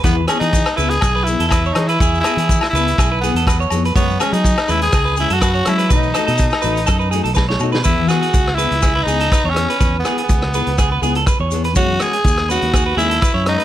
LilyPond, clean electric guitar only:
\new Staff \with { instrumentName = "Clean electric guitar" } { \time 4/4 \key e \major \tempo 4 = 123 b'8 gis'16 gis'8 r16 b'8 gis'16 b'16 r16 a'16 b'16 cis''8 b'16 | gis'8 gis'16 gis'8 r16 b'8 gis'16 b'16 gis'16 a'16 b'16 cis''8 b'16 | cis''8 gis'16 gis'8 r16 b'8 gis'16 b'16 gis'16 a'16 b'16 cis''8 b'16 | b'8 a'16 a'8 r16 b'8 a'16 b'16 gis'16 a'16 b'16 cis''8 b'16 |
b'8 gis'16 gis'8 r16 b'8 gis'16 b'16 gis'16 a'16 b'16 cis''8 b'16 | b'8 gis'16 gis'8 r16 b'8 gis'16 b'16 gis'16 a'16 b'16 cis''8 b'16 | cis''8 fis'16 gis'8 r16 b'8 gis'16 b'16 gis'16 a'16 b'16 cis''8 b'16 | }